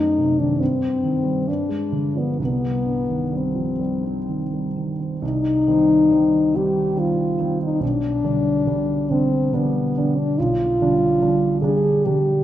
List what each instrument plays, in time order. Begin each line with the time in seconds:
Already playing: grand piano F#2 A3, french horn D#4
0.18 grand piano C3
0.39 grand piano D#3, french horn D4
0.59 grand piano G2, french horn C4
0.81 grand piano C4
1.03 grand piano D#3
1.23 grand piano G3
1.48 grand piano G2, french horn D4
1.69 grand piano G#3
1.92 grand piano D3
2.16 grand piano F3, french horn B3
2.39 grand piano C2, french horn B3
2.62 grand piano G3
2.85 grand piano G2
3.09 grand piano D#3
3.32 grand piano G3
3.37 french horn C4
3.55 grand piano F3
3.79 grand piano G3
4.04 grand piano C4
4.28 grand piano D#3
4.54 grand piano G3
4.77 grand piano D#3
4.99 grand piano C4
5.22 grand piano C2, french horn D#4
5.67 grand piano D#3 G3 C4
6.11 grand piano D#3 G3 C4
6.54 grand piano D#3 G3 C4, french horn G4
6.96 grand piano D#3 G3 C4, french horn F4
7.39 grand piano D#3 G3 C4
7.62 french horn D#4
7.80 grand piano B1, french horn D4
8.24 grand piano D3 G3 D4
8.66 grand piano D3 G3 D4
9.10 grand piano D3 G3 D4, french horn C4
9.53 grand piano D3 G3 D4, french horn B3
9.98 grand piano D3 G3 D4
10.18 french horn D4
10.39 grand piano B1, french horn F4
10.81 grand piano D3 G3 D4
11.22 grand piano D3 G3 D4
11.62 grand piano D3 G3 D4, french horn G#4
12.05 grand piano D3 G3 D4, french horn G4